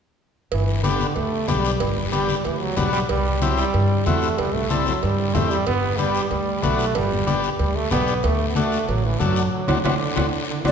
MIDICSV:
0, 0, Header, 1, 6, 480
1, 0, Start_track
1, 0, Key_signature, 1, "major"
1, 0, Tempo, 321371
1, 787, Time_signature, 4, 2, 24, 8
1, 16007, End_track
2, 0, Start_track
2, 0, Title_t, "Flute"
2, 0, Program_c, 0, 73
2, 15939, Note_on_c, 0, 74, 76
2, 16007, Note_off_c, 0, 74, 0
2, 16007, End_track
3, 0, Start_track
3, 0, Title_t, "Transistor combo organ"
3, 0, Program_c, 1, 18
3, 1246, Note_on_c, 1, 59, 75
3, 1254, Note_on_c, 1, 62, 81
3, 1254, Note_on_c, 1, 67, 92
3, 1592, Note_off_c, 1, 59, 0
3, 1596, Note_off_c, 1, 62, 0
3, 1596, Note_off_c, 1, 67, 0
3, 2215, Note_on_c, 1, 59, 81
3, 2224, Note_on_c, 1, 62, 66
3, 2225, Note_on_c, 1, 67, 83
3, 2556, Note_off_c, 1, 59, 0
3, 2561, Note_off_c, 1, 62, 0
3, 2562, Note_off_c, 1, 67, 0
3, 3167, Note_on_c, 1, 59, 84
3, 3172, Note_on_c, 1, 62, 80
3, 3177, Note_on_c, 1, 67, 91
3, 3512, Note_off_c, 1, 59, 0
3, 3514, Note_off_c, 1, 62, 0
3, 3517, Note_off_c, 1, 67, 0
3, 4131, Note_on_c, 1, 59, 82
3, 4135, Note_on_c, 1, 62, 74
3, 4143, Note_on_c, 1, 66, 89
3, 4474, Note_off_c, 1, 59, 0
3, 4476, Note_off_c, 1, 62, 0
3, 4480, Note_off_c, 1, 66, 0
3, 5102, Note_on_c, 1, 60, 79
3, 5109, Note_on_c, 1, 64, 78
3, 5116, Note_on_c, 1, 67, 99
3, 5440, Note_off_c, 1, 60, 0
3, 5443, Note_off_c, 1, 64, 0
3, 5447, Note_off_c, 1, 67, 0
3, 6066, Note_on_c, 1, 60, 77
3, 6075, Note_on_c, 1, 64, 70
3, 6080, Note_on_c, 1, 66, 91
3, 6402, Note_off_c, 1, 60, 0
3, 6407, Note_off_c, 1, 64, 0
3, 6409, Note_off_c, 1, 66, 0
3, 7024, Note_on_c, 1, 60, 86
3, 7025, Note_on_c, 1, 64, 82
3, 7032, Note_on_c, 1, 69, 92
3, 7361, Note_off_c, 1, 60, 0
3, 7362, Note_off_c, 1, 64, 0
3, 7365, Note_off_c, 1, 69, 0
3, 7972, Note_on_c, 1, 60, 79
3, 7983, Note_on_c, 1, 64, 67
3, 7985, Note_on_c, 1, 67, 77
3, 8315, Note_off_c, 1, 60, 0
3, 8321, Note_off_c, 1, 64, 0
3, 8322, Note_off_c, 1, 67, 0
3, 8939, Note_on_c, 1, 59, 87
3, 8949, Note_on_c, 1, 62, 77
3, 8951, Note_on_c, 1, 67, 86
3, 9279, Note_off_c, 1, 59, 0
3, 9284, Note_off_c, 1, 62, 0
3, 9285, Note_off_c, 1, 67, 0
3, 9897, Note_on_c, 1, 59, 77
3, 9900, Note_on_c, 1, 62, 70
3, 9905, Note_on_c, 1, 66, 93
3, 10238, Note_off_c, 1, 59, 0
3, 10239, Note_off_c, 1, 62, 0
3, 10242, Note_off_c, 1, 66, 0
3, 10853, Note_on_c, 1, 59, 78
3, 10858, Note_on_c, 1, 62, 83
3, 10865, Note_on_c, 1, 67, 92
3, 11196, Note_off_c, 1, 59, 0
3, 11199, Note_off_c, 1, 62, 0
3, 11202, Note_off_c, 1, 67, 0
3, 11812, Note_on_c, 1, 59, 80
3, 11818, Note_on_c, 1, 62, 72
3, 11826, Note_on_c, 1, 67, 88
3, 12155, Note_off_c, 1, 59, 0
3, 12159, Note_off_c, 1, 62, 0
3, 12163, Note_off_c, 1, 67, 0
3, 12783, Note_on_c, 1, 57, 82
3, 12787, Note_on_c, 1, 62, 81
3, 12794, Note_on_c, 1, 66, 94
3, 13121, Note_off_c, 1, 57, 0
3, 13123, Note_off_c, 1, 62, 0
3, 13126, Note_off_c, 1, 66, 0
3, 13732, Note_on_c, 1, 57, 72
3, 13740, Note_on_c, 1, 62, 68
3, 13743, Note_on_c, 1, 66, 88
3, 14076, Note_off_c, 1, 57, 0
3, 14080, Note_off_c, 1, 62, 0
3, 14081, Note_off_c, 1, 66, 0
3, 14456, Note_on_c, 1, 60, 99
3, 14458, Note_on_c, 1, 66, 97
3, 14461, Note_on_c, 1, 62, 88
3, 14614, Note_off_c, 1, 60, 0
3, 14615, Note_off_c, 1, 66, 0
3, 14617, Note_off_c, 1, 62, 0
3, 14701, Note_on_c, 1, 62, 96
3, 14703, Note_on_c, 1, 60, 91
3, 14705, Note_on_c, 1, 66, 85
3, 14857, Note_off_c, 1, 62, 0
3, 14858, Note_off_c, 1, 60, 0
3, 14859, Note_off_c, 1, 66, 0
3, 15171, Note_on_c, 1, 66, 74
3, 15174, Note_on_c, 1, 60, 74
3, 15178, Note_on_c, 1, 62, 86
3, 15331, Note_off_c, 1, 66, 0
3, 15333, Note_off_c, 1, 60, 0
3, 15336, Note_off_c, 1, 62, 0
3, 15904, Note_on_c, 1, 60, 95
3, 15909, Note_on_c, 1, 62, 83
3, 15910, Note_on_c, 1, 66, 85
3, 16007, Note_off_c, 1, 60, 0
3, 16007, Note_off_c, 1, 62, 0
3, 16007, Note_off_c, 1, 66, 0
3, 16007, End_track
4, 0, Start_track
4, 0, Title_t, "Trombone"
4, 0, Program_c, 2, 57
4, 780, Note_on_c, 2, 52, 84
4, 1263, Note_on_c, 2, 50, 80
4, 1285, Note_off_c, 2, 52, 0
4, 1739, Note_on_c, 2, 57, 89
4, 1761, Note_off_c, 2, 50, 0
4, 2209, Note_on_c, 2, 55, 83
4, 2232, Note_off_c, 2, 57, 0
4, 3171, Note_off_c, 2, 55, 0
4, 3180, Note_on_c, 2, 55, 95
4, 3654, Note_on_c, 2, 52, 91
4, 3677, Note_off_c, 2, 55, 0
4, 3894, Note_on_c, 2, 54, 100
4, 3916, Note_off_c, 2, 52, 0
4, 4136, Note_on_c, 2, 55, 93
4, 4159, Note_off_c, 2, 54, 0
4, 4364, Note_off_c, 2, 55, 0
4, 4373, Note_on_c, 2, 55, 97
4, 4483, Note_off_c, 2, 55, 0
4, 4629, Note_on_c, 2, 55, 98
4, 5116, Note_on_c, 2, 54, 87
4, 5138, Note_off_c, 2, 55, 0
4, 5339, Note_off_c, 2, 54, 0
4, 5348, Note_on_c, 2, 55, 95
4, 6071, Note_on_c, 2, 57, 99
4, 6093, Note_off_c, 2, 55, 0
4, 6536, Note_on_c, 2, 55, 98
4, 6559, Note_off_c, 2, 57, 0
4, 6791, Note_on_c, 2, 57, 96
4, 6814, Note_off_c, 2, 55, 0
4, 7024, Note_on_c, 2, 55, 91
4, 7046, Note_off_c, 2, 57, 0
4, 7266, Note_on_c, 2, 54, 90
4, 7289, Note_off_c, 2, 55, 0
4, 7513, Note_on_c, 2, 55, 91
4, 7536, Note_off_c, 2, 54, 0
4, 7985, Note_on_c, 2, 57, 97
4, 8007, Note_off_c, 2, 55, 0
4, 8227, Note_on_c, 2, 55, 101
4, 8249, Note_off_c, 2, 57, 0
4, 8462, Note_off_c, 2, 55, 0
4, 8471, Note_on_c, 2, 59, 108
4, 8937, Note_on_c, 2, 55, 104
4, 8959, Note_off_c, 2, 59, 0
4, 9409, Note_off_c, 2, 55, 0
4, 9418, Note_on_c, 2, 55, 92
4, 9902, Note_on_c, 2, 57, 99
4, 9925, Note_off_c, 2, 55, 0
4, 10382, Note_on_c, 2, 55, 100
4, 10404, Note_off_c, 2, 57, 0
4, 10941, Note_off_c, 2, 55, 0
4, 11338, Note_on_c, 2, 55, 93
4, 11584, Note_on_c, 2, 57, 104
4, 11606, Note_off_c, 2, 55, 0
4, 11816, Note_off_c, 2, 57, 0
4, 11825, Note_on_c, 2, 59, 98
4, 12311, Note_on_c, 2, 57, 95
4, 12333, Note_off_c, 2, 59, 0
4, 12684, Note_off_c, 2, 57, 0
4, 12690, Note_on_c, 2, 59, 65
4, 12793, Note_on_c, 2, 57, 97
4, 12815, Note_off_c, 2, 59, 0
4, 13265, Note_off_c, 2, 57, 0
4, 13274, Note_on_c, 2, 54, 87
4, 13513, Note_on_c, 2, 52, 90
4, 13536, Note_off_c, 2, 54, 0
4, 13735, Note_on_c, 2, 54, 88
4, 13758, Note_off_c, 2, 52, 0
4, 14200, Note_off_c, 2, 54, 0
4, 14209, Note_on_c, 2, 54, 84
4, 14664, Note_off_c, 2, 54, 0
4, 14699, Note_on_c, 2, 52, 85
4, 14809, Note_off_c, 2, 52, 0
4, 14918, Note_on_c, 2, 50, 78
4, 15601, Note_off_c, 2, 50, 0
4, 15658, Note_on_c, 2, 50, 86
4, 15891, Note_on_c, 2, 54, 85
4, 15914, Note_off_c, 2, 50, 0
4, 16007, Note_off_c, 2, 54, 0
4, 16007, End_track
5, 0, Start_track
5, 0, Title_t, "Upright bass"
5, 0, Program_c, 3, 32
5, 775, Note_on_c, 3, 31, 89
5, 1547, Note_off_c, 3, 31, 0
5, 1737, Note_on_c, 3, 38, 85
5, 2124, Note_off_c, 3, 38, 0
5, 2217, Note_on_c, 3, 35, 93
5, 2605, Note_off_c, 3, 35, 0
5, 2694, Note_on_c, 3, 31, 91
5, 3467, Note_off_c, 3, 31, 0
5, 3667, Note_on_c, 3, 38, 81
5, 4051, Note_off_c, 3, 38, 0
5, 4143, Note_on_c, 3, 35, 85
5, 4528, Note_off_c, 3, 35, 0
5, 4627, Note_on_c, 3, 36, 93
5, 5394, Note_off_c, 3, 36, 0
5, 5588, Note_on_c, 3, 43, 92
5, 5971, Note_off_c, 3, 43, 0
5, 6076, Note_on_c, 3, 40, 79
5, 6456, Note_off_c, 3, 40, 0
5, 6556, Note_on_c, 3, 36, 80
5, 7320, Note_off_c, 3, 36, 0
5, 7519, Note_on_c, 3, 43, 91
5, 7898, Note_off_c, 3, 43, 0
5, 7998, Note_on_c, 3, 40, 92
5, 8378, Note_off_c, 3, 40, 0
5, 8471, Note_on_c, 3, 31, 86
5, 9237, Note_off_c, 3, 31, 0
5, 9429, Note_on_c, 3, 38, 82
5, 9812, Note_off_c, 3, 38, 0
5, 9913, Note_on_c, 3, 35, 84
5, 10295, Note_off_c, 3, 35, 0
5, 10388, Note_on_c, 3, 31, 87
5, 11156, Note_off_c, 3, 31, 0
5, 11342, Note_on_c, 3, 38, 88
5, 11728, Note_off_c, 3, 38, 0
5, 11828, Note_on_c, 3, 35, 90
5, 12212, Note_off_c, 3, 35, 0
5, 12310, Note_on_c, 3, 38, 94
5, 13076, Note_off_c, 3, 38, 0
5, 13269, Note_on_c, 3, 33, 96
5, 13652, Note_off_c, 3, 33, 0
5, 13749, Note_on_c, 3, 42, 93
5, 14132, Note_off_c, 3, 42, 0
5, 14461, Note_on_c, 3, 38, 104
5, 14643, Note_off_c, 3, 38, 0
5, 14709, Note_on_c, 3, 38, 88
5, 14887, Note_off_c, 3, 38, 0
5, 15183, Note_on_c, 3, 38, 85
5, 15364, Note_off_c, 3, 38, 0
5, 15904, Note_on_c, 3, 38, 94
5, 16007, Note_off_c, 3, 38, 0
5, 16007, End_track
6, 0, Start_track
6, 0, Title_t, "Drums"
6, 771, Note_on_c, 9, 56, 104
6, 774, Note_on_c, 9, 74, 73
6, 921, Note_off_c, 9, 56, 0
6, 924, Note_off_c, 9, 74, 0
6, 1248, Note_on_c, 9, 63, 88
6, 1258, Note_on_c, 9, 56, 72
6, 1258, Note_on_c, 9, 73, 61
6, 1398, Note_off_c, 9, 63, 0
6, 1407, Note_off_c, 9, 56, 0
6, 1407, Note_off_c, 9, 73, 0
6, 1486, Note_on_c, 9, 63, 69
6, 1497, Note_on_c, 9, 73, 67
6, 1635, Note_off_c, 9, 63, 0
6, 1647, Note_off_c, 9, 73, 0
6, 1728, Note_on_c, 9, 56, 71
6, 1735, Note_on_c, 9, 74, 61
6, 1878, Note_off_c, 9, 56, 0
6, 1885, Note_off_c, 9, 74, 0
6, 2213, Note_on_c, 9, 63, 87
6, 2214, Note_on_c, 9, 56, 65
6, 2214, Note_on_c, 9, 66, 62
6, 2219, Note_on_c, 9, 73, 69
6, 2362, Note_off_c, 9, 63, 0
6, 2364, Note_off_c, 9, 56, 0
6, 2364, Note_off_c, 9, 66, 0
6, 2368, Note_off_c, 9, 73, 0
6, 2459, Note_on_c, 9, 73, 76
6, 2608, Note_off_c, 9, 73, 0
6, 2690, Note_on_c, 9, 74, 73
6, 2693, Note_on_c, 9, 56, 106
6, 2839, Note_off_c, 9, 74, 0
6, 2842, Note_off_c, 9, 56, 0
6, 2934, Note_on_c, 9, 64, 62
6, 3084, Note_off_c, 9, 64, 0
6, 3174, Note_on_c, 9, 73, 67
6, 3177, Note_on_c, 9, 63, 83
6, 3187, Note_on_c, 9, 56, 73
6, 3323, Note_off_c, 9, 73, 0
6, 3326, Note_off_c, 9, 63, 0
6, 3337, Note_off_c, 9, 56, 0
6, 3413, Note_on_c, 9, 63, 64
6, 3417, Note_on_c, 9, 73, 63
6, 3562, Note_off_c, 9, 63, 0
6, 3566, Note_off_c, 9, 73, 0
6, 3651, Note_on_c, 9, 74, 65
6, 3659, Note_on_c, 9, 56, 84
6, 3800, Note_off_c, 9, 74, 0
6, 3809, Note_off_c, 9, 56, 0
6, 4133, Note_on_c, 9, 73, 67
6, 4139, Note_on_c, 9, 63, 86
6, 4139, Note_on_c, 9, 64, 85
6, 4142, Note_on_c, 9, 56, 64
6, 4142, Note_on_c, 9, 66, 59
6, 4282, Note_off_c, 9, 73, 0
6, 4288, Note_off_c, 9, 63, 0
6, 4288, Note_off_c, 9, 64, 0
6, 4292, Note_off_c, 9, 56, 0
6, 4292, Note_off_c, 9, 66, 0
6, 4376, Note_on_c, 9, 73, 74
6, 4525, Note_off_c, 9, 73, 0
6, 4619, Note_on_c, 9, 56, 103
6, 4619, Note_on_c, 9, 74, 73
6, 4768, Note_off_c, 9, 56, 0
6, 4768, Note_off_c, 9, 74, 0
6, 5096, Note_on_c, 9, 63, 83
6, 5101, Note_on_c, 9, 73, 66
6, 5105, Note_on_c, 9, 56, 67
6, 5245, Note_off_c, 9, 63, 0
6, 5251, Note_off_c, 9, 73, 0
6, 5254, Note_off_c, 9, 56, 0
6, 5340, Note_on_c, 9, 73, 65
6, 5490, Note_off_c, 9, 73, 0
6, 5579, Note_on_c, 9, 74, 60
6, 5586, Note_on_c, 9, 56, 75
6, 5728, Note_off_c, 9, 74, 0
6, 5735, Note_off_c, 9, 56, 0
6, 6064, Note_on_c, 9, 73, 69
6, 6068, Note_on_c, 9, 56, 62
6, 6069, Note_on_c, 9, 63, 89
6, 6214, Note_off_c, 9, 73, 0
6, 6217, Note_off_c, 9, 56, 0
6, 6219, Note_off_c, 9, 63, 0
6, 6303, Note_on_c, 9, 73, 76
6, 6452, Note_off_c, 9, 73, 0
6, 6544, Note_on_c, 9, 74, 66
6, 6549, Note_on_c, 9, 56, 100
6, 6693, Note_off_c, 9, 74, 0
6, 6699, Note_off_c, 9, 56, 0
6, 6792, Note_on_c, 9, 64, 67
6, 6941, Note_off_c, 9, 64, 0
6, 7023, Note_on_c, 9, 73, 65
6, 7026, Note_on_c, 9, 63, 81
6, 7034, Note_on_c, 9, 56, 62
6, 7173, Note_off_c, 9, 73, 0
6, 7175, Note_off_c, 9, 63, 0
6, 7184, Note_off_c, 9, 56, 0
6, 7260, Note_on_c, 9, 73, 62
6, 7261, Note_on_c, 9, 63, 70
6, 7410, Note_off_c, 9, 73, 0
6, 7411, Note_off_c, 9, 63, 0
6, 7509, Note_on_c, 9, 74, 66
6, 7511, Note_on_c, 9, 56, 81
6, 7658, Note_off_c, 9, 74, 0
6, 7660, Note_off_c, 9, 56, 0
6, 7985, Note_on_c, 9, 63, 87
6, 7985, Note_on_c, 9, 64, 81
6, 7988, Note_on_c, 9, 56, 67
6, 7988, Note_on_c, 9, 66, 69
6, 7988, Note_on_c, 9, 73, 69
6, 8134, Note_off_c, 9, 63, 0
6, 8134, Note_off_c, 9, 64, 0
6, 8137, Note_off_c, 9, 56, 0
6, 8137, Note_off_c, 9, 66, 0
6, 8137, Note_off_c, 9, 73, 0
6, 8221, Note_on_c, 9, 73, 78
6, 8371, Note_off_c, 9, 73, 0
6, 8458, Note_on_c, 9, 74, 66
6, 8463, Note_on_c, 9, 56, 104
6, 8608, Note_off_c, 9, 74, 0
6, 8613, Note_off_c, 9, 56, 0
6, 8938, Note_on_c, 9, 73, 68
6, 8946, Note_on_c, 9, 56, 68
6, 8951, Note_on_c, 9, 63, 82
6, 9087, Note_off_c, 9, 73, 0
6, 9095, Note_off_c, 9, 56, 0
6, 9101, Note_off_c, 9, 63, 0
6, 9180, Note_on_c, 9, 73, 63
6, 9329, Note_off_c, 9, 73, 0
6, 9422, Note_on_c, 9, 74, 62
6, 9424, Note_on_c, 9, 56, 77
6, 9571, Note_off_c, 9, 74, 0
6, 9574, Note_off_c, 9, 56, 0
6, 9900, Note_on_c, 9, 73, 76
6, 9901, Note_on_c, 9, 63, 90
6, 9910, Note_on_c, 9, 56, 67
6, 10049, Note_off_c, 9, 73, 0
6, 10051, Note_off_c, 9, 63, 0
6, 10059, Note_off_c, 9, 56, 0
6, 10143, Note_on_c, 9, 73, 72
6, 10293, Note_off_c, 9, 73, 0
6, 10379, Note_on_c, 9, 74, 73
6, 10382, Note_on_c, 9, 56, 104
6, 10528, Note_off_c, 9, 74, 0
6, 10531, Note_off_c, 9, 56, 0
6, 10627, Note_on_c, 9, 64, 68
6, 10776, Note_off_c, 9, 64, 0
6, 10862, Note_on_c, 9, 73, 66
6, 10865, Note_on_c, 9, 63, 87
6, 10867, Note_on_c, 9, 56, 67
6, 11012, Note_off_c, 9, 73, 0
6, 11014, Note_off_c, 9, 63, 0
6, 11017, Note_off_c, 9, 56, 0
6, 11100, Note_on_c, 9, 73, 70
6, 11250, Note_off_c, 9, 73, 0
6, 11341, Note_on_c, 9, 74, 65
6, 11343, Note_on_c, 9, 56, 77
6, 11490, Note_off_c, 9, 74, 0
6, 11492, Note_off_c, 9, 56, 0
6, 11815, Note_on_c, 9, 63, 81
6, 11815, Note_on_c, 9, 64, 82
6, 11816, Note_on_c, 9, 73, 70
6, 11832, Note_on_c, 9, 56, 65
6, 11832, Note_on_c, 9, 66, 74
6, 11965, Note_off_c, 9, 63, 0
6, 11965, Note_off_c, 9, 64, 0
6, 11965, Note_off_c, 9, 73, 0
6, 11981, Note_off_c, 9, 56, 0
6, 11981, Note_off_c, 9, 66, 0
6, 12056, Note_on_c, 9, 73, 72
6, 12205, Note_off_c, 9, 73, 0
6, 12294, Note_on_c, 9, 74, 69
6, 12306, Note_on_c, 9, 56, 100
6, 12443, Note_off_c, 9, 74, 0
6, 12455, Note_off_c, 9, 56, 0
6, 12778, Note_on_c, 9, 63, 90
6, 12783, Note_on_c, 9, 73, 61
6, 12792, Note_on_c, 9, 56, 70
6, 12927, Note_off_c, 9, 63, 0
6, 12932, Note_off_c, 9, 73, 0
6, 12941, Note_off_c, 9, 56, 0
6, 13028, Note_on_c, 9, 73, 65
6, 13177, Note_off_c, 9, 73, 0
6, 13266, Note_on_c, 9, 74, 72
6, 13273, Note_on_c, 9, 56, 74
6, 13415, Note_off_c, 9, 74, 0
6, 13423, Note_off_c, 9, 56, 0
6, 13740, Note_on_c, 9, 73, 73
6, 13746, Note_on_c, 9, 63, 89
6, 13758, Note_on_c, 9, 56, 59
6, 13889, Note_off_c, 9, 73, 0
6, 13895, Note_off_c, 9, 63, 0
6, 13907, Note_off_c, 9, 56, 0
6, 13984, Note_on_c, 9, 73, 73
6, 14133, Note_off_c, 9, 73, 0
6, 14454, Note_on_c, 9, 63, 101
6, 14461, Note_on_c, 9, 74, 88
6, 14469, Note_on_c, 9, 65, 99
6, 14604, Note_off_c, 9, 63, 0
6, 14610, Note_off_c, 9, 74, 0
6, 14619, Note_off_c, 9, 65, 0
6, 14706, Note_on_c, 9, 63, 98
6, 14706, Note_on_c, 9, 74, 89
6, 14719, Note_on_c, 9, 65, 104
6, 14855, Note_off_c, 9, 63, 0
6, 14856, Note_off_c, 9, 74, 0
6, 14869, Note_off_c, 9, 65, 0
6, 15182, Note_on_c, 9, 63, 94
6, 15194, Note_on_c, 9, 74, 97
6, 15195, Note_on_c, 9, 65, 92
6, 15331, Note_off_c, 9, 63, 0
6, 15343, Note_off_c, 9, 74, 0
6, 15345, Note_off_c, 9, 65, 0
6, 15902, Note_on_c, 9, 63, 104
6, 15908, Note_on_c, 9, 65, 90
6, 15916, Note_on_c, 9, 74, 101
6, 16007, Note_off_c, 9, 63, 0
6, 16007, Note_off_c, 9, 65, 0
6, 16007, Note_off_c, 9, 74, 0
6, 16007, End_track
0, 0, End_of_file